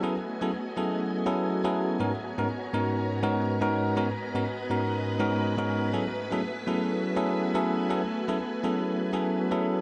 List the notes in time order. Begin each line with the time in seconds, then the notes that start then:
Already playing: A3 B3 F#4 G#5
0.03 F#3 B3 C#4 E4 G#4 A4 D#5
0.41 F#3 B3 C#4 E4 G#4 A4
0.76 F#3 B3 C#4 E4 G#4 A4
1.26 F#3 B3 C#4 E4 G#4 A4
1.64 F#3 B3 C#4 E4 G#4 A4
1.99 G#2 B3 C#4 D#4 F#4 A#4 B4 C#5 A#5
2.38 G#2 B3 C#4 D#4 F#4 A#4
2.73 G#2 B3 C#4 D#4 F#4 A#4
3.22 G#2 B3 C#4 D#4 F#4 A#4
3.61 G#2 B3 C#4 D#4 F#4 A#4
3.96 G#2 B3 C#4 D#4 F#4 A#4 D#5
4.34 G#2 B3 C#4 D#4 F#4 A#4
4.70 G#2 B3 C#4 D#4 F#4 A#4
5.19 G#2 B3 C#4 D#4 F#4 A#4
5.57 G#2 B3 C#4 D#4 F#4 A#4
5.93 F#3 A3 B3 C#4 E4 F#4 G#4 A4 E5 G#5
6.31 F#3 B3 C#4 E4 G#4 A4
6.67 F#3 B3 C#4 E4 G#4 A4
7.16 F#3 B3 C#4 E4 G#4 A4
7.54 F#3 B3 C#4 E4 G#4 A4
7.89 F#3 B3 C#4 E4 G#4 A4
8.28 F#3 B3 C#4 E4 G#4 A4
8.63 F#3 B3 C#4 E4 G#4 A4
9.13 F#3 B3 C#4 E4 G#4 A4
9.51 F#3 B3 C#4 E4 G#4 A4